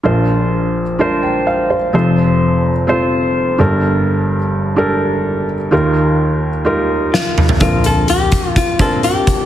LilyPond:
<<
  \new Staff \with { instrumentName = "Hollow-body jazz guitar" } { \time 4/4 \key bes \major \tempo 4 = 127 r1 | r1 | r1 | r2. f'4 |
f'8 a'8 g'4 f'8 a'8 g'4 | }
  \new Staff \with { instrumentName = "Felt piano" } { \time 4/4 \key bes \major << { r2 r8 g''8 f''8 c''8~ | c''8 r2. r8 | r1 | r1 |
r1 | } \\ { <d' f' bes' c''>4. r8 <d' f' bes' c''>4. r8 | <c' f' a' c''>4. r8 <c' f' a' c''>4. <d' g' a' bes'>8~ | <d' g' a' bes'>4 r4 <d' g' a' bes'>4. r8 | <ees' f' g' bes'>4. r8 <ees' f' g' bes'>4. r8 |
<c' d' f' bes'>4. r4 <c' d' f' bes'>4 r8 | } >> }
  \new Staff \with { instrumentName = "Felt piano" } { \clef bass \time 4/4 \key bes \major <bes,, bes,>1 | <f,, f,>2.~ <f,, f,>8 <g,, g,>8~ | <g,, g,>2.~ <g,, g,>8 r8 | <ees, ees>1 |
<bes,, bes,>1 | }
  \new DrumStaff \with { instrumentName = "Drums" } \drummode { \time 4/4 r4 r4 r4 r4 | r4 r4 r4 r4 | r4 r4 r4 r4 | r4 r4 r4 sn8 toml16 tomfh16 |
<hh bd>8 hh8 hh8 <hh bd>8 <hh bd>8 <hh bd>8 hh8 <hh bd>8 | }
>>